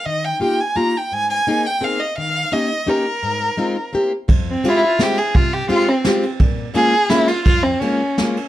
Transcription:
<<
  \new Staff \with { instrumentName = "Violin" } { \time 3/4 \key aes \major \tempo 4 = 170 ees''8 g''8 g''8 aes''8 bes''8 g''8 | aes''8 aes''4 g''8 f''8 ees''8 | f''4 ees''4 bes'4~ | bes'2 r4 |
\key f \minor r8 c'8 e'32 f'32 e'16 f'8 g'8 aes'8 | f'8 g'8 f'8 c'4 r8 | r4 aes'4 e'8 f'8 | f'8 c'8 des'4. r8 | }
  \new Staff \with { instrumentName = "Steel-string acoustic guitar" } { \time 3/4 \key aes \major ees4 <bes ees' f' g'>8 r8 <bes ees' f' g'>8 r8 | aes,4 <bes c' ees' aes'>8 r8 <bes c' ees' aes'>8 r8 | ees4 <bes des' ees' g'>8 r8 <bes des' ees' g'>8 r8 | aes,4 <aes c' ees' f'>8 r8 <bes c' e' g'>8 r8 |
\key f \minor f,4 <aes c' f' g'>8 r8 <aes c' f' g'>8 r8 | c4 <aes c' f' g'>8 r8 <aes c' f' g'>8 r8 | bes,4 <aes bes des' f'>8 r8 <aes bes des' f'>8 r8 | f,4 <aes bes des' f'>8 r8 <aes bes des' f'>8 r8 | }
  \new DrumStaff \with { instrumentName = "Drums" } \drummode { \time 3/4 r4 r4 r4 | r4 r4 r4 | r4 r4 r4 | r4 r4 r4 |
<bd cymr>4 cymr4 <cymr sn>8 cymr8 | <bd cymr>4 cymr4 <cymr sn>8 cymr8 | <bd cymr>4 cymr4 <cymr sn>8 cymr8 | <bd cymr>4 cymr4 <cymr sn>8 cymr8 | }
>>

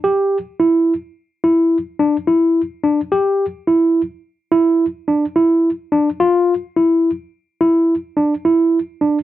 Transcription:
\new Staff \with { instrumentName = "Tine electric piano" } { \time 11/8 \key d \dorian \tempo 4 = 107 g'4 e'4 r8 e'4 d'8 e'4 d'8 | g'4 e'4 r8 e'4 d'8 e'4 d'8 | f'4 e'4 r8 e'4 d'8 e'4 d'8 | }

